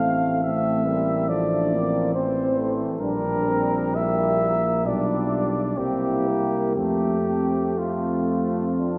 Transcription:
Already playing: A1 A3 C4 F5
0.43 A3 C4 E5
0.87 G3 A#3
1.29 F3 A3 D4 D5
1.72 A#3 C4
2.13 E3 C4 C5
2.57 A3
3.00 A#1 G3 D4 A#4
3.48 C4
3.95 A#3 E4 E5
4.85 B1 G3 D4 F4 D5
5.31 G3
5.78 C2 A#3 C4 E4 G4
6.27 A#3
6.76 F2 A3 C4 G4
7.78 A3 C4 F4
8.79 D4

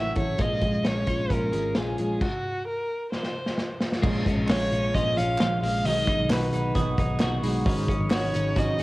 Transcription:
Already playing: A1 A2 E3 F#3 A3 C#4 E4 F#4 E5
0.16 A1 A3 C#4 E4 C#5, kick, closed hi-hat
0.20 F#3
0.38 A#1 A#2 F3 G#3 C#4 F4 D#5, kick, closed hi-hat
0.61 A#1 G#3 C#4 F4, kick, closed hi-hat
0.84 A#1 F3 G#3 C#4 F4 C#5, snare, closed hi-hat
1.07 A#1 G#3 C#4 F4, kick, closed hi-hat
1.29 A#1 A#2 F3 G#3 C#4 F4 A#4, kick, closed hi-hat
1.52 G#1 G#3 C#4 F4, closed hi-hat
1.75 A#1 F3 G#3 C#4 G#4, snare, closed hi-hat
1.79 F4
1.98 A#1 G#3 C#4 F4, closed hi-hat
2.21 F#4, kick, crash
2.68 A#4
3.12 C5, snare
3.23 snare
3.46 snare
3.58 snare
3.80 snare
3.92 snare
4.03 A#1 A#2 F3 G#3 C#4 F4, kick, crash
4.25 G#3 C#4 F4, kick, hi-hat pedal, open hi-hat
4.37 A#1
4.47 A#1 F3 G#3 C#5, snare, clap, hi-hat pedal, open hi-hat
4.51 C#4 F4
4.71 A#1 G#3 C#4 F4, hi-hat pedal, open hi-hat
4.94 A#1 A#2 F3 G#3 C#4 F4 D#5, kick, hi-hat pedal, open hi-hat
5.17 A#1 G#3 C#4 F4 F5, hi-hat pedal, open hi-hat
5.38 A#1 F3 G#3 C#4 F4, snare, clap, hi-hat pedal, open hi-hat
5.61 A#1 G#3 C#4 F4 F5, hi-hat pedal, open hi-hat
5.84 B1 B2 D#3 F#3 B3 D#4 G#4 D#5, hi-hat pedal, open hi-hat
6.06 F#3 B3 D#4 G#4, kick, hi-hat pedal, open hi-hat
6.19 B1
6.30 B1 F#3 B3 D#4 F#4 G#4 B4, snare, clap, hi-hat pedal, open hi-hat
6.53 B1 F#3 B3 D#4 G#4, hi-hat pedal, open hi-hat
6.75 B1 B2 D#3 F#3 B3 D#4 F#4 G#4 D#6, kick, hi-hat pedal, open hi-hat
6.98 B1 F#3 B3 D#4 G#4, kick, hi-hat pedal, open hi-hat
7.20 B1 F#3 B3 D#4 F#4 G#4 C#6, snare, clap, hi-hat pedal, open hi-hat
7.43 B1 F#3 G#3 B3 D#4 G#4 B5, hi-hat pedal, open hi-hat
7.65 G#1 G#2 C#3 D#3 F#3 C#4 D#4 G#4 C#6, kick, hi-hat pedal, open hi-hat
7.88 F#3 C#4 D#4 G#4, kick, hi-hat pedal, open hi-hat
7.99 G#1
8.10 G#1 F#3 C#4 D#4 F#4 G#4 C#5, snare, clap, hi-hat pedal, open hi-hat
8.33 G#1 F#3 C#4 D#4 G#4, hi-hat pedal, open hi-hat
8.55 G#1 G#2 C#3 F#3 C#4 D#4 F#4 G#4 D#5, kick, hi-hat pedal, open hi-hat
8.78 G#1 C#4 D#4 G#4, hi-hat pedal, open hi-hat

